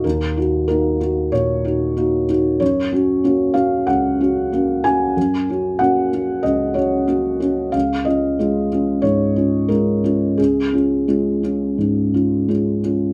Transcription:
\new Staff \with { instrumentName = "Felt piano" } { \time 4/4 \key fis \major \tempo 4 = 93 << { ais'4 ais'4 cis''4. r8 | cis''4. eis''8 fis''4. gis''8~ | gis''4 fis''4 dis''8 cis''4. | eis''8 dis''4. cis''4 ais'4 |
gis'2. r4 | } \\ { dis,8 <dis' fis'>8 <ais dis' fis'>8 <dis' fis'>8 ais,8 <dis' fis'>8 <ais dis' fis'>8 <dis' fis'>8 | fis,8 <cis' fis'>8 <ais cis' fis'>8 <cis' fis'>8 cis,8 <cis' fis'>8 <ais cis' fis'>8 <cis' fis'>8 | fis,8 <cis' fis'>8 <ais cis' fis'>8 <cis' fis'>8 cis,8 <cis' fis'>8 <ais cis' fis'>8 <cis' fis'>8 | cis,8 <cis' eis'>8 <gis cis' eis'>8 <cis' eis'>8 gis,8 <cis' eis'>8 <gis cis' eis'>8 <cis' eis'>8 |
cis,8 <cis' eis'>8 <gis cis' eis'>8 <cis' eis'>8 gis,8 <cis' eis'>8 <gis cis' eis'>8 <cis' eis'>8 | } >> }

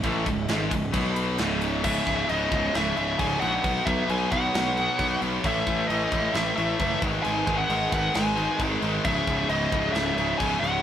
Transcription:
<<
  \new Staff \with { instrumentName = "Lead electric guitar" } { \time 4/4 \key cis \minor \tempo 4 = 133 r1 | e''4 dis''4 e''8 e''8 gis''8 fis''8~ | fis''8 e''8 gis''8 fis''2 r8 | e''4 dis''4 e''8 e''4 r8 |
gis''8. fis''8. fis''8 gis''4 r4 | e''4 dis''4 e''8 e''8 gis''8 fis''8 | }
  \new Staff \with { instrumentName = "String section" } { \time 4/4 \key cis \minor << { <cis' gis' e''>2 <b fis' b''>4 <cis' gis' e''>4 | <cis' e' gis'>1 | <b fis'>1 | <a e'>2.~ <a e'>8 <gis dis'>8~ |
<gis dis'>1 | <cis' e'>1 | } \\ { dis''2 cis''4 dis''4 | r1 | cis''1 | b'2.~ b'8 gis'8~ |
gis'1~ | gis'1 | } >> }
  \new Staff \with { instrumentName = "Distorted electric guitar" } { \clef bass \time 4/4 \key cis \minor <a, e a>8 <cis, gis,>8 <gis, dis gis>8 <cis, gis,>8 <b, fis b>4 <cis, gis, cis>4 | <cis, gis, cis>8 <cis, gis, cis>8 <cis, gis, cis>8 <cis, gis, cis>8 <cis, gis, cis>8 <cis, gis, cis>8 <cis, gis, cis>8 <cis, gis, cis>8 | <b, fis b>8 <b, fis b>8 <b, fis b>8 <b, fis b>8 <b, fis b>8 <b, fis b>8 <b, fis b>8 <b, fis b>8 | <a, e a>8 <a, e a>8 <a, e a>8 <a, e a>8 <a, e a>8 <a, e a>8 <a, e a>8 <gis, dis gis>8 |
<gis, dis gis>8 <gis, dis gis>8 <gis, dis gis>8 <gis, dis gis>8 <gis, dis gis>8 <gis, dis gis>8 <gis, dis gis>8 <gis, dis gis>8 | <cis, gis, cis>8 <cis, gis, cis>8 <cis, gis, cis>8 <cis, gis, cis>8 <cis, gis, cis>8 <cis, gis, cis>8 <cis, gis, cis>8 <cis, gis, cis>8 | }
  \new Staff \with { instrumentName = "Distorted electric guitar" } { \clef bass \time 4/4 \key cis \minor <a, e a>8 <cis, gis,>8 <gis, dis gis>8 <cis, gis,>8 <b, fis b>4 <cis, gis, cis>4 | <cis, gis, cis>8 <cis, gis, cis>8 <cis, gis, cis>8 <cis, gis, cis>8 <cis, gis, cis>8 <cis, gis, cis>8 <cis, gis, cis>8 <cis, gis, cis>8 | <b, fis b>8 <b, fis b>8 <b, fis b>8 <b, fis b>8 <b, fis b>8 <b, fis b>8 <b, fis b>8 <b, fis b>8 | <a, e a>8 <a, e a>8 <a, e a>8 <a, e a>8 <a, e a>8 <a, e a>8 <a, e a>8 <gis, dis gis>8 |
<gis, dis gis>8 <gis, dis gis>8 <gis, dis gis>8 <gis, dis gis>8 <gis, dis gis>8 <gis, dis gis>8 <gis, dis gis>8 <gis, dis gis>8 | <cis, gis, cis>8 <cis, gis, cis>8 <cis, gis, cis>8 <cis, gis, cis>8 <cis, gis, cis>8 <cis, gis, cis>8 <cis, gis, cis>8 <cis, gis, cis>8 | }
  \new Staff \with { instrumentName = "Picked electric bass" } { \clef bass \time 4/4 \key cis \minor a,,8 cis,,8 gis,,8 cis,,8 b,,4 cis,,4 | cis,,8 cis,,8 cis,,8 cis,,8 cis,,8 cis,,8 cis,,8 ais,,8 | b,,8 b,,8 b,,8 b,,8 b,,4 b,,8 b,,8 | a,,8 a,,8 a,,8 a,,8 a,,8 a,,8 fis,,8 gis,,8 |
gis,,8 gis,,8 gis,,8 gis,,8 gis,,4 gis,,8 gis,,8 | cis,,8 cis,,8 cis,,8 cis,,8 cis,,8 cis,,8 cis,,8 cis,,8 | }
  \new DrumStaff \with { instrumentName = "Drums" } \drummode { \time 4/4 <bd cymr>8 <bd cymr>8 <cymr sn>8 <bd cymr>8 <bd cymr>8 cymr8 <cymr sn>8 cymr8 | <cymc bd>8 <cymc bd>8 cymc8 <cymc bd>8 <cymc sn>8 cymc8 <cymc bd>8 cymc8 | <cymc bd>8 <cymc bd>8 cymc8 <cymc bd>8 <cymc sn>8 cymc8 <cymc bd>8 cymc8 | <cymc bd>8 <cymc bd>8 cymc8 <cymc bd>8 <cymc sn>8 cymc8 <cymc bd>8 <cymc bd>8 |
cymc8 <cymc bd>8 cymc8 <cymc bd>8 <cymc sn>8 cymc8 <cymc bd>8 cymc8 | <cymc bd>8 <cymc bd>8 cymc8 <cymc bd>8 <cymc sn>8 cymc8 <cymc bd>8 cymc8 | }
>>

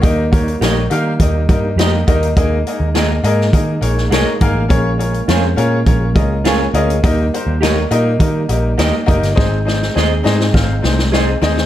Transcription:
<<
  \new Staff \with { instrumentName = "Clean electric guitar" } { \time 4/4 \key ees \mixolydian \tempo 4 = 103 r4 <g' bes' ees''>16 r4. r16 <g' bes' ees''>16 r8. | r4 <aes' bes' ees''>16 r4. r16 <aes' bes' ees''>16 r8. | r4 <f' aes' des''>16 r4. r16 <f' aes' des''>16 r8. | r4 <g' bes' ees''>16 r4. r16 <g' bes' ees''>16 r8. |
r4 <aes' c'' ees''>16 r4. r16 <aes' c'' ees''>16 r8. | }
  \new Staff \with { instrumentName = "Upright piano" } { \time 4/4 \key ees \mixolydian <bes ees' g' bes' ees''>8 <bes ees' g' bes' des''>8 <bes ees' g' bes' des''>8 <bes ees' g' bes' f''>8 <bes ees' g' bes' ees''>8 <bes ees' g' bes' ees''>8 <bes ees' g' bes' ees''>8 <bes ees' g' bes' ees''>8 | <bes ees' aes' bes' ees''>8 <bes ees' aes' bes' ees''>8 <bes ees' aes' bes' ees''>8 <bes ees' aes' bes' ees''>8 <bes ees' aes' bes' ees''>8 <bes ees' aes' bes' des''>8 <bes ees' aes' bes' des''>8 <bes ees' aes' bes' f''>8 | <des' f' aes' bes' des''>8 <des' f' aes' bes' des''>8 <des' f' aes' bes' c''>8 <des' f' aes' bes' des''>8 <des' f' aes' bes' des''>8 <des' f' aes' bes' ees'' bes''>8 <des' f' aes' bes' des'' aes''>8 <des' f' aes' bes' ees'' f''>8 | <bes ees' g' bes' ees''>8 <bes ees' g' bes' c''>8 <bes ees' g' bes' des''>8 <bes ees' g' bes' ees''>8 <bes ees' g' bes' ees''>8 <bes ees' g' bes' ees''>8 <bes ees' g' bes' ees''>8 <bes ees' g' bes' ees''>8 |
<c' ees' aes' c'' ees''>8 <c' ees' aes' c'' ees''>8 <c' ees' aes' c'' ees''>8 <c' ees' aes' c'' ees''>8 <c' ees' aes' c'' f''>8 <c' ees' aes' c'' ees''>8 <c' ees' aes' c'' ees''>8 <c' ees' aes' c'' ees''>8 | }
  \new Staff \with { instrumentName = "Tonewheel organ" } { \time 4/4 \key ees \mixolydian ees'1~ | ees'1 | des'1 | ees'1~ |
ees'1 | }
  \new Staff \with { instrumentName = "Tonewheel organ" } { \clef bass \time 4/4 \key ees \mixolydian << { bes1 | bes1~ | bes1~ | bes1 |
c'1 | } \\ { g1 | aes1~ | aes1 | g1 |
aes1 | } >> }
  \new Staff \with { instrumentName = "Picked electric bass" } { \clef bass \time 4/4 \key ees \mixolydian ees,4 bes,,8 ees8 ees,8 g,8 f,8 ees,8 | ees,8 r16 ees,8. aes,8 ees8 bes,,8 c,16 r16 aes,,16 a,,16 | bes,,4 f,8 bes,8 bes,,8 des,4 d,8 | ees,8 r16 ees,8. bes,8 ees8 bes,,8 ees,16 r16 ges,,16 g,,16 |
aes,,4 ees,8 aes,8 aes,,8 c,4 ees,8 | }
  \new DrumStaff \with { instrumentName = "Drums" } \drummode { \time 4/4 <hh bd>8 <hh bd>16 hh16 <hh sn>8 hh8 <hh bd>8 <hh bd>8 <hh sn>8 <hh bd>16 hh16 | <hh bd>8 hh8 <hh sn>8 hh16 sn16 <hh bd>8 hh16 sn16 <hh sn>8 <hh bd>8 | <hh bd>8 hh16 hh16 <hh sn>8 hh8 <hh bd>8 <hh bd>8 <hh sn>8 hh16 hh16 | <hh bd>8 hh8 <hh sn>8 hh8 <hh bd>8 hh8 <hh sn>8 <hh bd>16 <hh sn>16 |
<bd sn>8 sn16 sn16 sn8 sn16 sn16 <bd sn>8 sn16 sn16 sn8 sn16 sn16 | }
>>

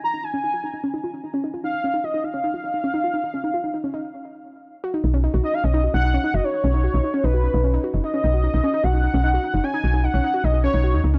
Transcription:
<<
  \new Staff \with { instrumentName = "Soft synth lead" } { \time 4/4 \key b \lydian \tempo 4 = 150 ais''8 gis''2 r4. | eis''4 dis''8 eis''2~ eis''8~ | eis''2. r4 | r4. dis''16 eis''16 dis''8. fis''4 dis''16 |
cis''2 b'4. r8 | dis''2 fis''2 | gis''4 fis''4 dis''8 cis''4 r8 | }
  \new Staff \with { instrumentName = "Synth pluck" } { \time 4/4 \key b \lydian eis'16 dis'16 dis'16 cis'16 dis'16 eis'16 dis'16 dis'16 cis'16 dis'16 eis'16 dis'16 dis'16 cis'16 dis'16 eis'16 | dis'16 dis'16 cis'16 dis'16 eis'16 dis'16 dis'16 cis'16 dis'16 eis'16 dis'16 dis'16 cis'16 dis'16 eis'16 dis'16 | dis'16 cis'16 dis'16 eis'16 dis'16 dis'16 cis'16 dis'16 r2 | fis'16 dis'16 dis'16 cis'16 dis'16 fis'16 dis'16 dis'16 cis'16 dis'16 fis'16 dis'16 dis'16 cis'16 dis'16 fis'16 |
dis'16 dis'16 cis'16 dis'16 fis'16 dis'16 dis'16 cis'16 dis'16 fis'16 dis'16 dis'16 cis'16 dis'16 fis'16 dis'16 | dis'16 cis'16 dis'16 fis'16 dis'16 dis'16 cis'16 dis'16 fis'16 dis'16 dis'16 cis'16 dis'16 fis'16 dis'16 dis'16 | cis'16 dis'16 fis'16 dis'16 dis'16 cis'16 dis'16 fis'16 dis'16 dis'16 cis'16 dis'16 fis'16 dis'16 dis'16 cis'16 | }
  \new Staff \with { instrumentName = "FM bass" } { \clef bass \time 4/4 \key b \lydian r1 | r1 | r1 | r8 b,,8 r16 b,,16 r8 b,,8 r16 b,,8 r8 fis,,16 |
r8 b,,8 r16 b,,16 r8 b,,8 r16 b,,8 r8 fis,,16 | r8 b,,8 r16 b,,16 r8 b,,8 r16 b,,8 r8 fis,,16 | r8 b,,8 r16 b,,16 r8 b,,8 r16 b,,8 dis,16 cis,8 | }
>>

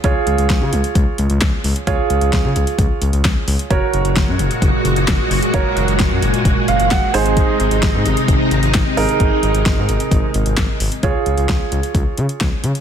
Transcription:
<<
  \new Staff \with { instrumentName = "Grand piano" } { \time 4/4 \key des \major \tempo 4 = 131 << { r1 | r1 | r1 | r2 r8 f''8 ges''8 aes''8 |
r1 | r1 | r1 | } \\ { <f' aes' des''>1 | <f' aes' des''>1 | <ges' bes' des''>1 | <ges' bes' des''>2.~ <ges' bes' des''>8 <ees' aes' c''>8~ |
<ees' aes' c''>2.~ <ees' aes' c''>8 <ees' aes' bes'>8~ | <ees' aes' bes'>2.~ <ees' aes' bes'>8 r8 | <f' aes' des''>1 | } >> }
  \new Staff \with { instrumentName = "String machine" } { \clef bass \time 4/4 \key des \major << { r1 | r1 | <bes, ges'>1~ | <bes, ges'>2.~ <bes, ges'>8 <c ees'>8~ |
<c ees'>1~ | <c ees'>1 | r1 | } \\ { r1 | r1 | aes1~ | aes1~ |
aes1~ | aes1 | r1 | } >> }
  \new Staff \with { instrumentName = "Analog synth bass" } { \clef bass \time 4/4 \key des \major des,16 r16 des,16 des,16 des,16 des16 des,16 r16 des,16 r16 des,16 des,16 des,16 r16 des,16 r16 | des,16 r16 des,16 des,16 des,16 des16 des,16 r16 des,16 r16 des,16 des,16 des,16 r16 des,16 r16 | ges,,16 r16 ges,,16 ges,,16 ges,,16 ges,16 ges,,16 r16 ges,,16 r16 ges,,16 ges,,16 ges,,16 r16 ges,,16 r16 | ges,,16 r16 ges,,16 ges,,16 ges,,16 ges,16 ges,,16 r16 ges,,16 r16 ges,,16 ges,,16 ges,,16 r16 aes,,8~ |
aes,,16 r16 aes,,16 aes,,16 aes,,16 aes,16 aes,,16 r16 aes,,16 r16 aes,,16 aes,,16 aes,,16 r16 aes,,16 r16 | aes,,16 r16 aes,,16 aes,,16 aes,,16 aes,16 aes,,16 r16 aes,,16 r16 aes,,16 aes,,16 aes,,16 r16 aes,,16 r16 | des,16 r16 des,16 des,16 des,16 r16 des,16 r16 des,16 r16 des16 r16 des,16 r16 des16 r16 | }
  \new DrumStaff \with { instrumentName = "Drums" } \drummode { \time 4/4 <hh bd>8 hh16 hh16 <hh bd sn>8 hh16 hh16 <hh bd>8 hh16 hh16 <hc hh bd sn>8 hho16 hh16 | <hh bd>8 hh16 hh16 <hh bd sn>8 hh16 hh16 <hh bd>8 hh16 hh16 <hc hh bd sn>8 hho16 hh16 | <hh bd>8 hh16 hh16 <hh bd sn>8 hh16 hh16 <hh bd>8 hh16 hh16 <hc hh bd sn>8 hho16 hh16 | <hh bd>8 hh16 hh16 <hh bd sn>8 hh16 hh16 <hh bd>8 hh16 hh16 <hc hh bd sn>8 hho16 hh16 |
<hh bd>8 hh16 hh16 <hh bd sn>8 hh16 hh16 <hh bd>8 hh16 hh16 <hc hh bd sn>8 hho16 hh16 | <hh bd>8 hh16 hh16 <hh bd sn>8 hh16 hh16 <hh bd>8 hh16 hh16 <hc hh bd sn>8 hho16 hh16 | <hh bd>8 hh16 hh16 <hh bd sn>8 hh16 hh16 <hh bd>8 hh16 hh16 <hh bd sn>8 hh16 hh16 | }
>>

